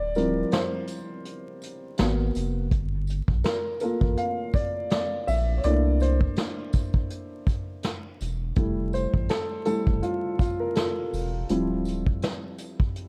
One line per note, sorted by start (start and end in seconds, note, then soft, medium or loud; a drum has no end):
0.00 0.44 D1 loud
0.00 0.16 D5 loud
0.15 1.22 F3 medium
0.15 1.22 G3 soft
0.15 1.22 C4 medium
0.15 1.22 E4 medium
0.15 0.54 A#4 medium
0.15 closed hi-hat medium
0.15 tambourine soft
0.52 1.21 C5 medium
0.52 snare loud
0.52 closed hi-hat medium
0.87 closed hi-hat medium
0.87 tambourine medium
1.25 closed hi-hat medium
1.62 closed hi-hat medium
1.62 tambourine soft
1.98 2.31 G#1 loud
1.98 2.68 A#3 medium
1.98 2.69 B3 soft
1.98 2.69 F#4 medium
1.98 snare loud
1.98 closed hi-hat loud
2.35 2.74 F1 medium
2.35 closed hi-hat medium
2.35 tambourine medium
2.71 3.21 G1 loud
2.71 kick loud
2.71 closed hi-hat medium
3.07 closed hi-hat medium
3.07 tambourine soft
3.28 3.43 A#1 medium
3.28 kick medium
3.44 3.79 A#4 medium
3.44 snare loud
3.44 closed hi-hat medium
3.80 4.32 A#3 medium
3.80 4.33 F4 medium
3.80 4.32 A4 medium
3.80 4.19 A#4 medium
3.80 closed hi-hat medium
3.80 tambourine medium
4.01 4.16 A1 medium
4.01 kick medium
4.17 4.55 F5 loud
4.17 closed hi-hat medium
4.53 4.90 D5 medium
4.53 kick loud
4.53 closed hi-hat medium
4.53 tambourine soft
4.90 5.29 D5 medium
4.90 snare loud
4.90 closed hi-hat medium
5.27 5.60 A#1 medium
5.27 5.56 E5 medium
5.27 open hi-hat medium
5.27 tambourine medium
5.58 5.64 C#5 medium
5.63 6.28 C2 loud
5.63 6.15 A3 medium
5.63 6.15 A#3 medium
5.63 6.15 D4 soft
5.63 6.15 E4 medium
5.63 5.98 D5 loud
5.63 closed hi-hat medium
6.00 7.44 C5 medium
6.00 closed hi-hat medium
6.00 tambourine soft
6.21 kick medium
6.36 snare loud
6.36 closed hi-hat medium
6.73 kick medium
6.73 closed hi-hat medium
6.73 tambourine medium
6.94 kick medium
7.10 closed hi-hat medium
7.47 kick loud
7.47 closed hi-hat medium
7.47 tambourine soft
7.83 snare loud
7.83 closed hi-hat loud
8.21 8.53 E1 medium
8.21 closed hi-hat medium
8.21 tambourine medium
8.56 9.06 F1 loud
8.56 9.07 G3 medium
8.56 9.08 A3 medium
8.56 9.08 E4 medium
8.56 kick loud
8.56 closed hi-hat medium
8.93 9.31 C5 medium
8.93 closed hi-hat medium
8.93 tambourine soft
9.14 9.28 A1 medium
9.14 kick medium
9.29 9.38 A4 loud
9.29 snare loud
9.29 closed hi-hat medium
9.65 10.00 G3 medium
9.65 10.00 A3 soft
9.65 10.00 E4 medium
9.65 10.04 A4 medium
9.65 closed hi-hat medium
9.65 tambourine medium
9.87 10.01 F1 medium
9.87 kick medium
10.03 10.38 F4 medium
10.03 closed hi-hat medium
10.39 10.44 F4 medium
10.39 kick loud
10.39 closed hi-hat medium
10.39 tambourine soft
10.60 10.75 A#4 medium
10.75 13.08 A4 medium
10.75 snare loud
10.75 closed hi-hat medium
11.13 11.45 E1 medium
11.13 open hi-hat medium
11.13 tambourine medium
11.49 12.13 D1 loud
11.49 13.08 F3 medium
11.49 13.08 G3 medium
11.49 13.08 C4 medium
11.49 13.08 E4 medium
11.49 closed hi-hat loud
11.85 closed hi-hat medium
11.85 tambourine soft
12.07 kick medium
12.22 snare loud
12.22 closed hi-hat medium
12.58 closed hi-hat medium
12.58 tambourine medium
12.80 kick medium
12.96 closed hi-hat medium